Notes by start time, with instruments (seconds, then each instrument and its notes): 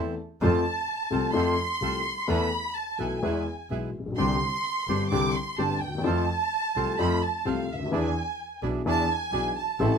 Already playing: upright piano E2 E3 A3 C4 A4, double bass E2, bandoneon C4 E4 A4
0.41 double bass F2, upright piano F2 F3 A3 C4 A4, bandoneon C4 F4 A4, violin section A5
1.10 upright piano C2 C3 F3 A3 C4 A4, double bass C2, bandoneon C4 F4 A4
1.33 upright piano F2 F3 A3 C4 A4, double bass F2, bandoneon C4 F4 A4, violin section C6
1.81 upright piano C2 C3 F3 A3 C4 A4, double bass C2, bandoneon C4 F4 A4
2.27 upright piano E2 E3 A3 B3 A4, double bass E2, bandoneon B3 E4 A4, violin section B5
2.75 violin section A5
2.98 upright piano B1 B2 E3 A3 B3 A4, double bass B1, bandoneon B3 E4 A4, violin section G#5
3.22 double bass E2, upright piano E2 E3 G#3 B3 G#4, bandoneon B3 E4 G#4
3.70 double bass B1, upright piano B1 B2 E3 G#3 B3 G#4, bandoneon B3 E4 G#4
3.93 double bass A#1
4.00 upright piano A1
4.06 upright piano A#1
4.12 upright piano B1
4.16 double bass C2, upright piano C2 C3 D3 G3 C4 G4, bandoneon C4 D4 G4, violin section C6
4.88 double bass G1, upright piano G1 G2 D3 G3 C4 G4, bandoneon C4 D4 G4
5.11 double bass C2, upright piano C2 C3 D3 G3 C4 G4, bandoneon C4 D4 G4, violin section D6
5.34 violin section C6
5.58 double bass G1, upright piano G1 G2 D3 G3 C4 G4, bandoneon C4 D4 G4, violin section A5
5.81 double bass D#2, violin section G5
5.88 upright piano D2
5.95 upright piano D#2 E2
6.04 upright piano F2 F3 A3 C4 A4, double bass F2, bandoneon C4 F4 A4, violin section A5
6.76 upright piano C2 C3 F3 A3 C4 A4, double bass C2, bandoneon C4 F4 A4
6.98 upright piano F2 F3 A3 C4 A4, double bass F2, bandoneon C4 F4 A4, violin section B5
7.23 violin section A5
7.45 upright piano C2 C3 F3 A3 C4 A4, double bass C2, bandoneon C4 F4 A4, violin section F5
7.69 double bass D2, violin section E5
7.74 upright piano C#2
7.80 upright piano D2
7.86 upright piano D#2
7.91 upright piano E2 E3 B3 D4 G#4, double bass E2, bandoneon D4 E4 G#4
7.96 violin section G#5
8.62 upright piano B1 B2 E3 B3 D4 G#4, double bass B1, bandoneon D4 E4 G#4
8.85 upright piano E2 E3 B3 D4 G#4, double bass E2, bandoneon D4 E4 G#4, violin section A5
9.13 violin section G#5
9.32 double bass B1, upright piano B1 B2 E3 B3 D4 G#4, bandoneon D4 E4 G#4
9.58 violin section A5
9.79 double bass A1, upright piano A1 A2 E3 A3 C4 A4, bandoneon C4 E4 A4